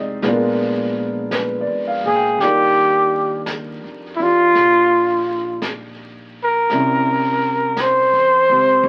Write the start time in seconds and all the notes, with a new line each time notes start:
Already playing: F1 G#3 C4 D#4 F4 G4 G#4 C5 D5
0.00 D#5
0.22 A#1 G#3 B3 D4, brush sweep, snare
0.27 F4 A#4
1.31 B4, brush sweep, snare, hi-hat pedal
1.61 D5
1.67 F2
1.87 F5
2.04 A#2 G#4
2.16 G5
2.38 D#2 D4 G4, brush sweep, snare
2.42 G3 D#4 F4 A#4
3.46 brush sweep, snare, hi-hat pedal
3.84 F2
4.16 D4 E4
4.20 E2 F4 G4
4.55 A#1, brush sweep, snare
5.62 brush sweep, snare, hi-hat pedal
6.43 A#4
6.70 C2 G3 C4 C#4 E4 A#4, brush sweep, snare
7.76 brush sweep, snare, hi-hat pedal
7.81 C5
8.13 E2
8.49 C#2 C4 G4
8.83 G1, brush sweep